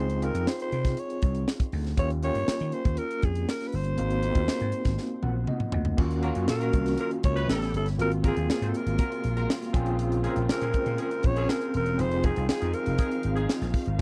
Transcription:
Already playing: C#2 C4 D#4 F4 G#4
0.00 C5
0.10 closed hi-hat
0.22 C4 D#4 F4 G#4 A#4, closed hi-hat
0.34 F2, closed hi-hat
0.47 C5, snare
0.60 C5, closed hi-hat
0.72 C3, closed hi-hat
0.85 kick, snare, closed hi-hat
0.97 C#5, closed hi-hat
1.10 closed hi-hat
1.22 C2, kick, closed hi-hat
1.35 closed hi-hat
1.48 snare
1.60 kick, closed hi-hat
1.72 D2, open hi-hat
1.84 snare, closed hi-hat
1.97 D#2 A#3 C#4 F4 G4 C#5, kick, closed hi-hat
2.10 closed hi-hat
2.22 A#3 C#4 F4 G4 C#5, closed hi-hat
2.35 G2, closed hi-hat
2.48 muted slap bass stroke, snare
2.60 D#3, closed hi-hat
2.72 C5, closed hi-hat
2.85 D#2, kick, closed hi-hat
2.97 A#4, closed hi-hat
3.11 closed hi-hat
3.22 F2 G#4, kick, closed hi-hat
3.35 closed hi-hat
3.49 A#4, snare
3.61 snare, closed hi-hat
3.67 B4
3.72 G1 C5, open hi-hat
3.84 closed hi-hat
3.97 G#1 A#3 C4 D#4 F#4, closed hi-hat
4.10 closed hi-hat
4.23 A#3 B3 D#4 F4, closed hi-hat
4.29 C4
4.35 D#2, kick, closed hi-hat
4.48 muted slap bass stroke, snare
4.60 G#2, closed hi-hat
4.72 closed hi-hat
4.85 G#1, kick, snare, closed hi-hat
4.98 snare
5.23 A#1 F#5, high tom
5.47 D#5, mid tom
5.60 mid tom
5.72 D2, floor tom
5.85 floor tom
5.97 D#2 D#3 F#3 A#3 C#4 F4 F#4 F5, kick, crash
6.11 closed hi-hat
6.21 F#3 A#3 C#4 F4 F#4 A#4, closed hi-hat
6.35 F#2, closed hi-hat
6.48 A#2 A#4, snare
6.61 F#3 F4 A#4, closed hi-hat
6.73 C2, kick, closed hi-hat
6.86 snare, closed hi-hat
6.98 F#3 F4 A#4, closed hi-hat
7.11 closed hi-hat
7.23 C#2 C#5, kick, closed hi-hat
7.36 G3 E4 B4, closed hi-hat
7.47 A1 C#3 G3 A3 B3 C#4 E4 G4 A4, snare
7.62 snare, closed hi-hat
7.74 G1 A4, closed hi-hat
7.86 snare, closed hi-hat
7.98 G#1 C3 F#3 G#3 A#3 C4 F4 F#4 A#4, closed hi-hat
8.12 closed hi-hat
8.23 F#3 A#3 C4 F4 G#4 A#4, kick, closed hi-hat
8.27 G#4
8.37 D#2, closed hi-hat
8.49 G#4, muted slap bass stroke, snare
8.62 G#2 F#3 F4 C5, closed hi-hat
8.69 A4
8.74 A#4, closed hi-hat
8.86 G#1, closed hi-hat
8.98 F#3 F4 A#4, kick, closed hi-hat
9.12 closed hi-hat
9.24 A#1, closed hi-hat
9.36 F#3 F4 A#4, closed hi-hat
9.50 snare
9.62 snare, closed hi-hat
9.73 A#1 C#3 G#3 C4 C#4 F4 G#4 C5, kick, closed hi-hat
9.86 closed hi-hat
9.99 closed hi-hat
10.12 closed hi-hat
10.23 F3 C4 C#4 F4 G#4 A#4, closed hi-hat
10.36 A#1, closed hi-hat
10.49 A#4, muted slap bass stroke, snare
10.61 A#2 F3 C#4 G#4, closed hi-hat
10.74 kick, closed hi-hat
10.86 A#2, closed hi-hat
10.98 F3 C#4 G#4 A#4, closed hi-hat
11.11 closed hi-hat
11.23 A#1 C#5, kick, closed hi-hat
11.36 F3 C#4 G#4, closed hi-hat
11.49 A#4, snare
11.61 closed hi-hat
11.74 E1 A#4, closed hi-hat
11.86 closed hi-hat
11.98 F1 D#3 F3 G#3 C4 D#4 F4 G#4 C5 F5, closed hi-hat
12.11 closed hi-hat
12.23 F3 C4 D#4 F4 G#4, kick, closed hi-hat
12.36 C2, closed hi-hat
12.49 G#4, snare
12.61 F2 F3 D#4 G#4, closed hi-hat
12.74 A#4, closed hi-hat
12.86 F1, closed hi-hat
12.98 F3 D#4 G#4, kick, closed hi-hat
13.11 closed hi-hat
13.23 G#1, closed hi-hat
13.36 F3 D#4 G#4, closed hi-hat
13.49 snare
13.62 A#1, snare, closed hi-hat
13.74 kick, open hi-hat
13.86 G#1, closed hi-hat
13.98 F#3

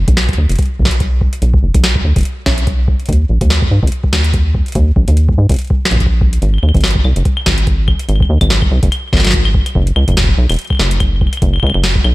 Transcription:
0.08 B1, kick, closed hi-hat
0.17 snare, closed hi-hat
0.23 closed hi-hat
0.29 kick, closed hi-hat
0.33 closed hi-hat
0.38 D#2
0.49 F#1, closed hi-hat
0.52 closed hi-hat
0.56 closed hi-hat
0.59 kick, closed hi-hat
0.62 closed hi-hat
0.66 closed hi-hat
0.79 B1, kick
0.82 kick, snare
0.85 kick
0.88 kick, closed hi-hat
1.00 kick, closed hi-hat
1.21 kick
1.33 closed hi-hat
1.42 B1, closed hi-hat
1.54 kick
1.63 F#1
1.74 B1, kick, closed hi-hat
1.84 snare, closed hi-hat
1.95 kick
2.04 D#2
2.16 F#1, kick, closed hi-hat
2.18 closed hi-hat
2.21 closed hi-hat
2.23 closed hi-hat
2.25 closed hi-hat
2.46 B1, kick, snare
2.58 closed hi-hat
2.67 kick, closed hi-hat
2.88 kick
3.00 closed hi-hat
3.06 D#2, kick, closed hi-hat
3.09 closed hi-hat
3.13 closed hi-hat
3.29 A#1
3.41 D#2, kick, closed hi-hat
3.50 snare, closed hi-hat
3.62 kick
3.71 G#2
3.83 C#2, kick
3.87 closed hi-hat
3.92 closed hi-hat
4.04 kick
4.13 D#2, snare
4.24 closed hi-hat
4.34 kick, closed hi-hat
4.54 kick
4.66 closed hi-hat
4.68 closed hi-hat
4.72 closed hi-hat
4.75 D#2, kick, closed hi-hat
4.96 A#1, kick
5.08 D#2, closed hi-hat
5.17 closed hi-hat
5.29 kick
5.38 G#2
5.49 C#2, kick, closed hi-hat
5.52 closed hi-hat
5.54 closed hi-hat
5.56 closed hi-hat
5.59 closed hi-hat
5.62 closed hi-hat
5.65 closed hi-hat
5.67 kick, closed hi-hat
5.85 snare
5.91 A#1, kick, closed hi-hat
5.96 kick
6.00 kick, closed hi-hat
6.06 kick
6.21 kick
6.33 closed hi-hat
6.42 G#1, closed hi-hat
6.54 claves
6.58 claves
6.63 D#2, claves
6.69 claves
6.75 G#1, kick, closed hi-hat
6.77 closed hi-hat
6.81 snare, closed hi-hat
6.84 closed hi-hat, claves
6.88 closed hi-hat
6.91 closed hi-hat
6.95 kick
7.04 C2, claves
7.16 F#1, closed hi-hat
7.25 kick, closed hi-hat
7.37 claves
7.46 G#1, kick, snare
7.58 closed hi-hat
7.67 kick, closed hi-hat
7.88 kick, claves
7.99 closed hi-hat
8.09 G#1, closed hi-hat, claves
8.16 claves
8.20 kick, claves
8.29 D#2
8.41 G#1, kick, closed hi-hat, claves
8.50 snare, closed hi-hat
8.62 kick, claves
8.71 C2
8.83 F#1, kick, closed hi-hat
8.92 closed hi-hat, claves
9.13 G#1, kick, snare, claves
9.17 snare, claves
9.20 snare, claves
9.25 snare, closed hi-hat, claves
9.27 snare, claves
9.31 kick, snare, closed hi-hat
9.45 claves
9.54 kick
9.66 closed hi-hat, claves
9.75 F#1, kick
9.87 closed hi-hat
9.96 C#2, claves
10.08 F#1, kick, closed hi-hat
10.10 kick
10.14 kick
10.17 kick, snare, closed hi-hat, claves
10.21 kick
10.24 kick
10.29 kick
10.38 B1
10.49 E1, closed hi-hat, claves
10.52 closed hi-hat
10.54 closed hi-hat
10.56 closed hi-hat
10.59 closed hi-hat
10.62 closed hi-hat
10.64 closed hi-hat
10.70 kick, claves
10.73 claves
10.75 claves
10.77 F#1, snare, claves
10.82 claves
10.85 claves
10.91 closed hi-hat
11.00 kick, closed hi-hat, claves
11.21 kick, claves
11.27 claves
11.33 closed hi-hat, claves
11.37 claves
11.42 F#1, kick, closed hi-hat
11.54 claves
11.56 claves
11.60 C#2, claves
11.63 kick, claves
11.67 claves
11.70 claves
11.74 F#1, claves
11.84 snare, closed hi-hat
11.95 kick
12.04 B1, claves

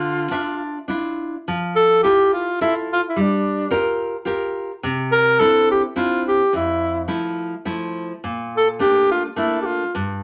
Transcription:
Already playing: D3 F4
0.31 D4 F4 E5
0.88 D4 E4 F4
1.48 F3
1.76 A4
2.03 E4 F4 G4 A4
2.33 F4
2.61 E4 F4 A4
2.93 F4
3.09 E4
3.16 G3
3.21 D4
3.71 F4 G4 A#4
4.25 F4 G4 A#4
4.83 C3
5.12 A#4
5.40 C4 D4 E4 A4
5.71 G4
5.96 C4 D4 E4 F4
6.28 G4
6.53 F2 E4
7.08 F3 A3 E4
7.65 F3 A3 E4
8.24 A#2
8.57 A4
8.79 A3 A#3 D4 G4
9.11 F4
9.36 A3 A#3 D4 E4
9.62 F4 G4
9.95 G2

